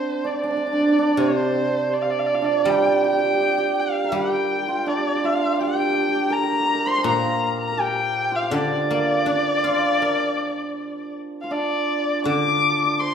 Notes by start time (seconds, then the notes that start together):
Already playing: C4 D4 C5
0.24 D4 D5
0.44 D4 D5
0.50 D4
0.57 D4
0.67 D4
0.73 D4
0.81 D4
0.88 D4
0.99 D4
1.09 D4
1.17 C3 C4 C5
1.94 D5
2.02 F5
2.10 D5
2.19 F5
2.26 D5
2.34 F4 F5
2.42 D4 D5
2.65 G3 G4
2.70 G5
3.04 G4 G5
3.13 G4
3.19 G4
3.25 G4
3.34 G4
3.41 G4
3.48 G4
3.58 G4
3.80 F5
4.04 A#4
4.12 G3 G4 G5
4.68 F4
4.86 D4 D5
5.16 G4
5.24 F4 F5
5.60 G4 G5
5.67 G4
5.74 G4
5.81 G4
5.90 G4
5.95 G4
6.00 G4
6.09 G4
6.15 G4
6.30 A#4 A#5
6.38 A#4
6.43 A#4
6.52 A#4
6.60 A#4
6.65 A#4
6.75 A#4
6.86 C5 C6
6.98 C5
7.04 A#2 A#4 A#5
7.61 A#5
7.71 A#4
7.78 G4 G5
8.32 F4
8.36 F5
8.42 F4
8.51 D3 D4 D5
8.91 A#3
9.26 D4
9.64 F4
10.02 A#4
11.41 F4 F5
11.51 D4 D5
12.24 D3 D5 D6
12.30 D5
12.38 D5
12.47 D5
12.56 D5
12.65 D5
12.70 D5
12.78 D5
12.85 D5
13.00 C5 C6